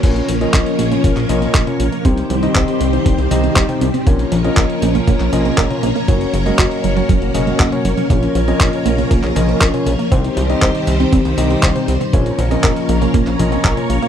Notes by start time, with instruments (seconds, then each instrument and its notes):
0.03 analog synth bass A#1, string machine F3 A#3 C#4 A#4 C#5, synth arpeggio sound A#3, tine electric piano C#4 F4 A#4 C#5, kick, closed hi-hat, crash
0.16 closed hi-hat
0.28 analog synth bass A#1, synth arpeggio sound F3, closed hi-hat
0.41 synth arpeggio sound C4, tine electric piano C#4 F4 A#4 D#5, closed hi-hat
0.54 analog synth bass A#1, synth arpeggio sound A#4, kick, clap, closed hi-hat
0.66 closed hi-hat
0.79 analog synth bass A#1, synth arpeggio sound A#3, closed hi-hat
0.91 synth arpeggio sound A#3, tine electric piano C#4 F4 A#4 C#5, closed hi-hat, high tom
1.04 analog synth bass A#1, synth arpeggio sound A#3, kick, closed hi-hat
1.17 analog synth bass A#1, clap, closed hi-hat
1.29 analog synth bass A#1, synth arpeggio sound F3, tine electric piano C#4 F4 A#4 D#5, closed hi-hat, high tom
1.42 synth arpeggio sound C4, closed hi-hat
1.54 analog synth bass A#1, synth arpeggio sound A#4, kick, clap, closed hi-hat
1.67 tine electric piano C#4 F4 A#4 C#5, closed hi-hat, high tom
1.80 analog synth bass A#1, synth arpeggio sound A#3, closed hi-hat
1.92 synth arpeggio sound A#3, closed hi-hat
2.05 analog synth bass C2, string machine D#3 G3 C4 G4 C5, synth arpeggio sound C4, tine electric piano C4 D#4 G4 C5, kick, closed hi-hat
2.17 closed hi-hat
2.30 analog synth bass C2, synth arpeggio sound F#3, closed hi-hat
2.43 synth arpeggio sound C4, tine electric piano C4 D#4 G4 D#5, closed hi-hat
2.55 analog synth bass C2, synth arpeggio sound C5, kick, clap, closed hi-hat
2.68 closed hi-hat
2.80 analog synth bass C2, synth arpeggio sound C4, closed hi-hat
2.93 synth arpeggio sound C4, tine electric piano C4 D#4 G4 C5, closed hi-hat
3.06 analog synth bass C2, synth arpeggio sound C4, kick, closed hi-hat
3.18 analog synth bass C2, closed hi-hat
3.31 analog synth bass C2, synth arpeggio sound F#3, tine electric piano C4 D#4 G4 D#5, closed hi-hat, high tom
3.44 synth arpeggio sound C4, closed hi-hat
3.56 analog synth bass C2, synth arpeggio sound C5, kick, clap, closed hi-hat
3.69 tine electric piano C4 D#4 G4 C5, closed hi-hat, high tom
3.81 analog synth bass C2, synth arpeggio sound C4, closed hi-hat
3.94 synth arpeggio sound C4, closed hi-hat, high tom
4.07 analog synth bass A#1, string machine F3 A#3 C#4 A#4 C#5, synth arpeggio sound A#3, tine electric piano C#4 F4 A#4 C#5, kick, closed hi-hat
4.19 closed hi-hat
4.32 analog synth bass A#1, synth arpeggio sound F3, closed hi-hat
4.44 synth arpeggio sound C4, tine electric piano C#4 F4 A#4 D#5, closed hi-hat
4.57 analog synth bass A#1, synth arpeggio sound A#4, kick, clap, closed hi-hat
4.70 closed hi-hat
4.82 analog synth bass A#1, synth arpeggio sound A#3, closed hi-hat
4.95 synth arpeggio sound A#3, tine electric piano C#4 F4 A#4 C#5, closed hi-hat, high tom
5.07 analog synth bass A#1, synth arpeggio sound A#3, kick, closed hi-hat
5.20 analog synth bass A#1, clap, closed hi-hat
5.33 analog synth bass A#1, synth arpeggio sound F3, tine electric piano C#4 F4 A#4 D#5, closed hi-hat, high tom
5.45 synth arpeggio sound C4, closed hi-hat
5.58 analog synth bass A#1, synth arpeggio sound A#4, kick, clap, closed hi-hat
5.70 tine electric piano C#4 F4 A#4 C#5, closed hi-hat, high tom
5.83 analog synth bass A#1, synth arpeggio sound A#3, closed hi-hat
5.96 synth arpeggio sound A#3, closed hi-hat
6.08 analog synth bass F#1, string machine F#3 C#4, synth arpeggio sound F#3, tine electric piano C#4 F#4 A#4 C#5, kick, closed hi-hat
6.21 closed hi-hat
6.34 analog synth bass F#1, synth arpeggio sound C#3, closed hi-hat
6.46 synth arpeggio sound G#3, tine electric piano C#4 F#4 A#4 D#5, closed hi-hat
6.59 analog synth bass F#1, synth arpeggio sound F#4, kick, clap, closed hi-hat
6.71 closed hi-hat
6.84 analog synth bass F#1, synth arpeggio sound F#3, closed hi-hat
6.97 synth arpeggio sound F#3, tine electric piano C#4 F#4 A#4 C#5, closed hi-hat
7.09 analog synth bass F#1, synth arpeggio sound F#3, kick, closed hi-hat
7.22 analog synth bass F#1, closed hi-hat
7.34 analog synth bass F#1, synth arpeggio sound C#3, tine electric piano C#4 F#4 A#4 D#5, closed hi-hat, high tom
7.47 synth arpeggio sound G#3, closed hi-hat
7.60 analog synth bass F#1, synth arpeggio sound F#4, kick, clap, closed hi-hat
7.72 tine electric piano C#4 F#4 A#4 C#5, closed hi-hat, high tom
7.85 analog synth bass F#1, synth arpeggio sound F#3, closed hi-hat
7.97 synth arpeggio sound F#3, closed hi-hat, high tom
8.10 analog synth bass A#1, string machine F3 A#4 C#5, synth arpeggio sound A#3, tine electric piano C#4 F4 A#4 C#5, kick, closed hi-hat
8.23 closed hi-hat
8.35 analog synth bass A#1, synth arpeggio sound F3, closed hi-hat
8.48 synth arpeggio sound C4, tine electric piano C#4 F4 A#4 D#5, closed hi-hat
8.60 analog synth bass A#1, synth arpeggio sound A#4, kick, clap, closed hi-hat
8.73 closed hi-hat
8.86 analog synth bass A#1, synth arpeggio sound A#3, closed hi-hat
8.98 synth arpeggio sound A#3, tine electric piano C#4 F4 A#4 C#5, closed hi-hat, high tom
9.11 analog synth bass A#1, synth arpeggio sound A#3, kick, closed hi-hat
9.23 analog synth bass A#1, clap, closed hi-hat
9.36 analog synth bass A#1, synth arpeggio sound F3, tine electric piano C#4 F4 A#4 D#5, closed hi-hat, high tom
9.49 synth arpeggio sound C4, closed hi-hat
9.61 analog synth bass A#1, synth arpeggio sound A#4, kick, clap, closed hi-hat
9.74 tine electric piano C#4 F4 A#4 C#5, closed hi-hat, high tom
9.86 analog synth bass A#1, synth arpeggio sound A#3, closed hi-hat
9.99 synth arpeggio sound A#3, closed hi-hat
10.12 analog synth bass C2, string machine D#3 G3 C4 G4 C5, synth arpeggio sound C4, tine electric piano C4 D#4 G4 C5, kick, closed hi-hat
10.24 closed hi-hat
10.37 analog synth bass C2, synth arpeggio sound F#3, closed hi-hat
10.49 synth arpeggio sound C4, tine electric piano C4 D#4 G4 D#5, closed hi-hat
10.62 analog synth bass C2, synth arpeggio sound C5, kick, clap, closed hi-hat
10.75 closed hi-hat
10.87 analog synth bass C2, synth arpeggio sound C4, closed hi-hat
11.00 tine electric piano C4 D#4 G4 C5, synth arpeggio sound C4, closed hi-hat
11.13 analog synth bass C2, synth arpeggio sound C4, kick, closed hi-hat
11.25 analog synth bass C2, closed hi-hat
11.38 analog synth bass C2, synth arpeggio sound F#3, tine electric piano C4 D#4 G4 D#5, closed hi-hat, high tom
11.50 synth arpeggio sound C4, closed hi-hat
11.63 analog synth bass C2, synth arpeggio sound C5, kick, clap, closed hi-hat
11.75 tine electric piano C4 D#4 G4 C5, closed hi-hat, high tom
11.88 analog synth bass C2, synth arpeggio sound C4, closed hi-hat
12.01 synth arpeggio sound C4, closed hi-hat, high tom
12.13 analog synth bass A#1, string machine F3 A#3 C#4 A#4 C#5, synth arpeggio sound A#3, tine electric piano C#4 F4 A#4 C#5, kick, closed hi-hat
12.26 closed hi-hat
12.39 analog synth bass A#1, synth arpeggio sound F3, closed hi-hat
12.51 synth arpeggio sound C4, tine electric piano C#4 F4 A#4 D#5, closed hi-hat
12.64 analog synth bass A#1, synth arpeggio sound A#4, kick, clap, closed hi-hat
12.76 closed hi-hat
12.89 analog synth bass A#1, synth arpeggio sound A#3, closed hi-hat
13.01 synth arpeggio sound A#3, tine electric piano C#4 F4 A#4 C#5, closed hi-hat, high tom
13.14 analog synth bass A#1, synth arpeggio sound A#3, kick, closed hi-hat
13.27 analog synth bass A#1, clap, closed hi-hat
13.39 analog synth bass A#1, synth arpeggio sound F3, tine electric piano C#4 F4 A#4 D#5, closed hi-hat, high tom
13.52 synth arpeggio sound C4, closed hi-hat
13.65 analog synth bass A#1, synth arpeggio sound A#4, kick, clap, closed hi-hat
13.77 tine electric piano C#4 F4 A#4 C#5, closed hi-hat, high tom
13.90 analog synth bass A#1, synth arpeggio sound A#3, closed hi-hat
14.02 synth arpeggio sound A#3, closed hi-hat